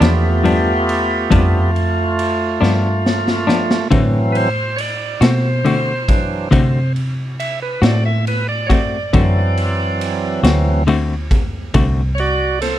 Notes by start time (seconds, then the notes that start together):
Already playing: A3 F4
0.00 E2 F3 B3 D4 G4, snare, ride
0.43 G2 F3 B3 D4, ride
0.89 ride
1.31 F2 G2 F3 B3 D4, kick, ride
1.76 ride
2.19 ride
2.61 G2 F3 B3 D4, snare
3.06 snare
3.28 snare
3.47 F3 B3 D4, snare
3.71 snare
3.91 A2 D3 E3 F#3 A3 C4 F#4, kick, ride
4.32 B4, ride
4.37 C5
4.76 C#5 D5, ride
5.21 B2 A3 C4 F#4 C5, snare, ride
5.65 D3 A3 C4 F#4, ride
6.09 E3 F#3 D4, kick, ride
6.51 C3 D3 A3 C4 F#4, kick, ride
6.96 ride
7.40 E5, ride
7.62 B4
7.82 A2 A3 C4 F#4 D5, snare, ride
8.06 E5
8.27 B4, ride
8.49 D5
8.67 C4 F#4 C#5, kick
8.71 A3 D5, ride
9.13 F#2 D3 E3 F#3 A3 C4 F#4, kick, ride
9.57 ride
10.01 ride
10.43 D2 E3 F#3 A3 C4 F#4, snare, ride
10.87 D3 A3 C4 F#4, ride
11.31 kick, ride
11.74 C2 D3 A3 C4 F#4, kick, ride
12.15 C#5, ride
12.20 F#4 D5
12.61 A4 C5, snare, ride